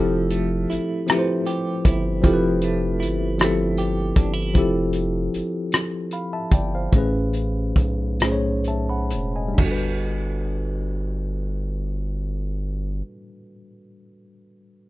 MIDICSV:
0, 0, Header, 1, 5, 480
1, 0, Start_track
1, 0, Key_signature, 1, "major"
1, 0, Tempo, 770218
1, 1393, Time_signature, 6, 3, 24, 8
1, 3315, Tempo, 798935
1, 4275, Tempo, 841515
1, 4755, Tempo, 881057
1, 5235, Tempo, 933126
1, 5715, Tempo, 961538
1, 8372, End_track
2, 0, Start_track
2, 0, Title_t, "Tine electric piano"
2, 0, Program_c, 0, 4
2, 0, Note_on_c, 0, 53, 80
2, 0, Note_on_c, 0, 60, 75
2, 0, Note_on_c, 0, 64, 73
2, 0, Note_on_c, 0, 67, 76
2, 0, Note_on_c, 0, 69, 91
2, 58, Control_c, 0, 64, 127
2, 398, Note_off_c, 0, 53, 0
2, 404, Note_off_c, 0, 60, 0
2, 407, Note_off_c, 0, 64, 0
2, 413, Note_off_c, 0, 67, 0
2, 417, Note_off_c, 0, 69, 0
2, 664, Note_on_c, 0, 53, 70
2, 671, Note_on_c, 0, 60, 61
2, 681, Note_on_c, 0, 64, 63
2, 686, Note_on_c, 0, 67, 65
2, 698, Note_on_c, 0, 71, 59
2, 727, Note_off_c, 0, 71, 0
2, 740, Note_on_c, 0, 72, 81
2, 1122, Note_off_c, 0, 53, 0
2, 1126, Note_off_c, 0, 60, 0
2, 1131, Note_off_c, 0, 64, 0
2, 1133, Note_off_c, 0, 67, 0
2, 1160, Note_off_c, 0, 72, 0
2, 1382, Note_on_c, 0, 53, 83
2, 1390, Note_on_c, 0, 60, 71
2, 1398, Note_on_c, 0, 64, 74
2, 1407, Note_on_c, 0, 67, 79
2, 1415, Note_on_c, 0, 69, 74
2, 1445, Note_off_c, 0, 69, 0
2, 1455, Note_on_c, 0, 71, 88
2, 1840, Note_off_c, 0, 53, 0
2, 1845, Note_off_c, 0, 60, 0
2, 1848, Note_off_c, 0, 64, 0
2, 1853, Note_off_c, 0, 67, 0
2, 1877, Note_off_c, 0, 71, 0
2, 2108, Note_on_c, 0, 53, 71
2, 2116, Note_on_c, 0, 60, 61
2, 2121, Note_on_c, 0, 64, 66
2, 2134, Note_on_c, 0, 67, 60
2, 2143, Note_on_c, 0, 69, 78
2, 2563, Note_off_c, 0, 53, 0
2, 2567, Note_off_c, 0, 60, 0
2, 2570, Note_off_c, 0, 64, 0
2, 2576, Note_off_c, 0, 67, 0
2, 2581, Note_off_c, 0, 69, 0
2, 2825, Note_on_c, 0, 53, 79
2, 2838, Note_on_c, 0, 60, 67
2, 2843, Note_on_c, 0, 64, 76
2, 2853, Note_on_c, 0, 67, 78
2, 2861, Note_on_c, 0, 69, 85
2, 3284, Note_off_c, 0, 53, 0
2, 3291, Note_off_c, 0, 60, 0
2, 3293, Note_off_c, 0, 64, 0
2, 3298, Note_off_c, 0, 67, 0
2, 3302, Note_off_c, 0, 69, 0
2, 3801, Note_on_c, 0, 83, 52
2, 3803, Note_on_c, 0, 77, 49
2, 3909, Note_off_c, 0, 83, 0
2, 3911, Note_off_c, 0, 77, 0
2, 3923, Note_on_c, 0, 76, 50
2, 3924, Note_on_c, 0, 81, 59
2, 4031, Note_off_c, 0, 76, 0
2, 4032, Note_off_c, 0, 81, 0
2, 4041, Note_on_c, 0, 79, 60
2, 4047, Note_on_c, 0, 74, 49
2, 4152, Note_off_c, 0, 79, 0
2, 4155, Note_off_c, 0, 74, 0
2, 4173, Note_on_c, 0, 77, 50
2, 4174, Note_on_c, 0, 72, 42
2, 4277, Note_on_c, 0, 45, 80
2, 4283, Control_c, 0, 64, 0
2, 4286, Note_on_c, 0, 57, 69
2, 4294, Note_on_c, 0, 61, 70
2, 4299, Note_on_c, 0, 68, 65
2, 4311, Note_on_c, 0, 71, 79
2, 4373, Control_c, 0, 64, 127
2, 4392, Note_off_c, 0, 77, 0
2, 4393, Note_off_c, 0, 72, 0
2, 4729, Note_off_c, 0, 45, 0
2, 4734, Note_off_c, 0, 57, 0
2, 4738, Note_off_c, 0, 61, 0
2, 4740, Note_off_c, 0, 68, 0
2, 4746, Note_off_c, 0, 71, 0
2, 4995, Note_on_c, 0, 45, 62
2, 5001, Note_on_c, 0, 57, 58
2, 5008, Note_on_c, 0, 61, 55
2, 5017, Note_on_c, 0, 68, 61
2, 5023, Note_on_c, 0, 72, 52
2, 5049, Note_off_c, 0, 72, 0
2, 5061, Note_on_c, 0, 73, 71
2, 5255, Note_on_c, 0, 81, 50
2, 5256, Note_on_c, 0, 76, 42
2, 5357, Note_off_c, 0, 81, 0
2, 5358, Note_off_c, 0, 76, 0
2, 5366, Note_on_c, 0, 83, 51
2, 5371, Note_on_c, 0, 78, 48
2, 5447, Note_off_c, 0, 45, 0
2, 5449, Note_off_c, 0, 57, 0
2, 5453, Note_off_c, 0, 61, 0
2, 5457, Note_off_c, 0, 68, 0
2, 5478, Note_off_c, 0, 73, 0
2, 5588, Note_off_c, 0, 83, 0
2, 5590, Note_off_c, 0, 78, 0
2, 5604, Note_on_c, 0, 80, 50
2, 5606, Note_on_c, 0, 75, 43
2, 5669, Note_on_c, 0, 55, 61
2, 5699, Note_on_c, 0, 62, 54
2, 5721, Control_c, 0, 64, 0
2, 5730, Note_on_c, 0, 66, 57
2, 5753, Note_on_c, 0, 69, 59
2, 5785, Note_on_c, 0, 71, 69
2, 5815, Control_c, 0, 64, 127
2, 5829, Note_off_c, 0, 80, 0
2, 5830, Note_off_c, 0, 75, 0
2, 7382, Note_off_c, 0, 55, 0
2, 7412, Note_off_c, 0, 62, 0
2, 7443, Note_off_c, 0, 66, 0
2, 7466, Note_off_c, 0, 69, 0
2, 7498, Note_off_c, 0, 71, 0
2, 8372, End_track
3, 0, Start_track
3, 0, Title_t, "Clean electric guitar"
3, 0, Program_c, 1, 27
3, 0, Note_on_c, 1, 53, 72
3, 0, Note_on_c, 1, 69, 71
3, 191, Note_on_c, 1, 57, 50
3, 435, Note_on_c, 1, 64, 50
3, 669, Note_off_c, 1, 57, 0
3, 671, Note_on_c, 1, 57, 56
3, 910, Note_off_c, 1, 69, 0
3, 913, Note_on_c, 1, 67, 59
3, 1158, Note_off_c, 1, 64, 0
3, 1160, Note_on_c, 1, 64, 49
3, 1386, Note_off_c, 1, 53, 0
3, 1394, Note_on_c, 1, 53, 67
3, 1643, Note_off_c, 1, 57, 0
3, 1645, Note_on_c, 1, 57, 54
3, 1867, Note_off_c, 1, 64, 0
3, 1869, Note_on_c, 1, 64, 50
3, 2124, Note_off_c, 1, 57, 0
3, 2127, Note_on_c, 1, 57, 51
3, 2350, Note_off_c, 1, 67, 0
3, 2358, Note_on_c, 1, 67, 59
3, 2590, Note_off_c, 1, 64, 0
3, 2592, Note_on_c, 1, 62, 48
3, 2702, Note_off_c, 1, 62, 0
3, 2702, Note_on_c, 1, 64, 43
3, 2832, Note_off_c, 1, 53, 0
3, 2875, Note_off_c, 1, 64, 0
3, 2882, Note_off_c, 1, 67, 0
3, 3198, Note_off_c, 1, 57, 0
3, 8372, End_track
4, 0, Start_track
4, 0, Title_t, "Analog synth bass"
4, 0, Program_c, 2, 38
4, 0, Note_on_c, 2, 29, 98
4, 413, Note_off_c, 2, 29, 0
4, 450, Note_on_c, 2, 31, 47
4, 494, Note_off_c, 2, 31, 0
4, 1159, Note_on_c, 2, 31, 102
4, 1400, Note_on_c, 2, 29, 99
4, 1409, Note_off_c, 2, 31, 0
4, 1887, Note_on_c, 2, 31, 85
4, 1896, Note_off_c, 2, 29, 0
4, 2574, Note_off_c, 2, 31, 0
4, 2600, Note_on_c, 2, 31, 82
4, 2845, Note_on_c, 2, 29, 104
4, 2854, Note_off_c, 2, 31, 0
4, 3296, Note_off_c, 2, 29, 0
4, 3336, Note_on_c, 2, 31, 45
4, 3378, Note_off_c, 2, 31, 0
4, 4041, Note_on_c, 2, 31, 92
4, 4257, Note_off_c, 2, 31, 0
4, 4287, Note_on_c, 2, 33, 98
4, 4739, Note_off_c, 2, 33, 0
4, 4762, Note_on_c, 2, 35, 84
4, 5488, Note_on_c, 2, 28, 87
4, 5495, Note_off_c, 2, 35, 0
4, 5703, Note_off_c, 2, 28, 0
4, 5725, Note_on_c, 2, 31, 90
4, 7438, Note_off_c, 2, 31, 0
4, 8372, End_track
5, 0, Start_track
5, 0, Title_t, "Drums"
5, 190, Note_on_c, 9, 42, 49
5, 253, Note_off_c, 9, 42, 0
5, 444, Note_on_c, 9, 42, 51
5, 506, Note_off_c, 9, 42, 0
5, 673, Note_on_c, 9, 42, 61
5, 684, Note_on_c, 9, 37, 103
5, 735, Note_off_c, 9, 42, 0
5, 747, Note_off_c, 9, 37, 0
5, 915, Note_on_c, 9, 42, 45
5, 977, Note_off_c, 9, 42, 0
5, 1152, Note_on_c, 9, 42, 71
5, 1153, Note_on_c, 9, 36, 83
5, 1214, Note_off_c, 9, 42, 0
5, 1215, Note_off_c, 9, 36, 0
5, 1394, Note_on_c, 9, 36, 84
5, 1396, Note_on_c, 9, 42, 55
5, 1457, Note_off_c, 9, 36, 0
5, 1459, Note_off_c, 9, 42, 0
5, 1631, Note_on_c, 9, 42, 51
5, 1694, Note_off_c, 9, 42, 0
5, 1886, Note_on_c, 9, 42, 53
5, 1948, Note_off_c, 9, 42, 0
5, 2114, Note_on_c, 9, 42, 56
5, 2126, Note_on_c, 9, 37, 104
5, 2177, Note_off_c, 9, 42, 0
5, 2188, Note_off_c, 9, 37, 0
5, 2353, Note_on_c, 9, 42, 46
5, 2415, Note_off_c, 9, 42, 0
5, 2594, Note_on_c, 9, 36, 83
5, 2595, Note_on_c, 9, 42, 66
5, 2656, Note_off_c, 9, 36, 0
5, 2657, Note_off_c, 9, 42, 0
5, 2836, Note_on_c, 9, 36, 81
5, 2838, Note_on_c, 9, 42, 58
5, 2898, Note_off_c, 9, 36, 0
5, 2900, Note_off_c, 9, 42, 0
5, 3073, Note_on_c, 9, 42, 48
5, 3135, Note_off_c, 9, 42, 0
5, 3329, Note_on_c, 9, 42, 46
5, 3389, Note_off_c, 9, 42, 0
5, 3557, Note_on_c, 9, 42, 53
5, 3568, Note_on_c, 9, 37, 94
5, 3617, Note_off_c, 9, 42, 0
5, 3628, Note_off_c, 9, 37, 0
5, 3791, Note_on_c, 9, 42, 47
5, 3851, Note_off_c, 9, 42, 0
5, 4034, Note_on_c, 9, 36, 84
5, 4034, Note_on_c, 9, 42, 65
5, 4094, Note_off_c, 9, 36, 0
5, 4094, Note_off_c, 9, 42, 0
5, 4280, Note_on_c, 9, 36, 77
5, 4280, Note_on_c, 9, 42, 52
5, 4337, Note_off_c, 9, 36, 0
5, 4337, Note_off_c, 9, 42, 0
5, 4513, Note_on_c, 9, 42, 44
5, 4570, Note_off_c, 9, 42, 0
5, 4755, Note_on_c, 9, 36, 72
5, 4764, Note_on_c, 9, 42, 47
5, 4810, Note_off_c, 9, 36, 0
5, 4818, Note_off_c, 9, 42, 0
5, 4996, Note_on_c, 9, 42, 56
5, 5006, Note_on_c, 9, 37, 93
5, 5051, Note_off_c, 9, 42, 0
5, 5060, Note_off_c, 9, 37, 0
5, 5237, Note_on_c, 9, 42, 41
5, 5288, Note_off_c, 9, 42, 0
5, 5475, Note_on_c, 9, 42, 62
5, 5526, Note_off_c, 9, 42, 0
5, 5719, Note_on_c, 9, 36, 72
5, 5720, Note_on_c, 9, 43, 76
5, 5720, Note_on_c, 9, 49, 62
5, 5769, Note_off_c, 9, 36, 0
5, 5770, Note_off_c, 9, 43, 0
5, 5770, Note_off_c, 9, 49, 0
5, 8372, End_track
0, 0, End_of_file